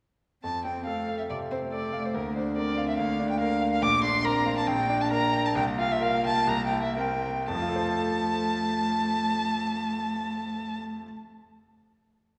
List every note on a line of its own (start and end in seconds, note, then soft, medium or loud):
0.44 1.27 F2 soft
0.44 0.88 C4 soft
0.44 0.64 A5 medium
0.65 1.00 C4 soft
0.65 0.85 G5 medium
0.86 1.72 A3 soft
0.86 1.22 A4 soft
0.86 1.18 F5 medium
1.09 1.43 F5 soft
1.18 1.23 E5 soft
1.30 1.65 C3 soft
1.30 1.38 D5 medium
1.51 1.86 C4 soft
1.51 1.59 C5 medium
1.72 2.17 A3 soft
1.72 2.06 A4 soft
1.72 2.07 D5 medium
1.93 2.15 F5 soft
2.05 2.16 C5 medium
2.14 2.96 D2 soft
2.14 2.58 A#3 soft
2.14 2.35 A#4 medium
2.35 2.70 D4 soft
2.35 2.56 C5 medium
2.57 3.00 C4 medium
2.57 2.91 A#4 soft
2.57 2.88 D5 medium
2.78 3.11 F5 medium
2.88 2.97 E5 medium
2.98 3.80 D2 medium
2.98 3.82 A#3 medium
2.98 3.29 F5 medium
3.19 3.53 D4 soft
3.30 3.39 G5 medium
3.40 3.74 A#4 medium
3.40 3.71 F5 medium
3.61 3.83 F5 medium
3.72 3.84 F5 medium
3.82 4.65 A#1 medium
3.82 4.26 A#3 medium
3.82 4.03 D6 medium
4.03 4.37 D4 medium
4.03 4.26 C6 medium
4.24 4.69 C4 medium
4.24 4.59 A#4 medium
4.24 4.57 A#5 loud
4.46 4.67 F5 medium
4.58 4.68 A5 medium
4.67 5.53 A#1 medium
4.67 5.55 A#3 medium
4.67 5.03 G5 medium
4.89 5.25 D4 medium
5.01 5.10 A5 medium
5.11 5.47 A#4 medium
5.11 5.47 A#5 medium
5.33 5.56 G5 medium
5.46 5.55 A5 medium
5.55 6.45 C2 medium
5.55 6.99 A#3 medium
5.55 5.64 G5 medium
5.78 6.15 F4 medium
5.78 5.93 F5 medium
5.92 6.04 E5 medium
6.01 6.39 A#4 medium
6.01 6.25 F5 medium
6.24 6.48 G5 medium
6.24 6.50 A5 medium
6.47 7.45 C2 medium
6.47 6.65 A#5 medium
6.66 6.81 G5 medium
6.72 7.12 E4 soft
6.83 6.97 E5 medium
6.96 7.25 C4 medium
6.96 7.38 A#4 medium
6.96 7.48 G5 medium
7.22 7.48 G5 soft
7.48 10.77 F2 medium
7.48 10.78 A3 medium
7.48 10.78 A5 medium
7.55 10.84 F3 medium
7.62 10.91 F4 medium
7.69 10.98 A4 medium
7.76 11.05 C5 medium
7.83 11.12 A5 medium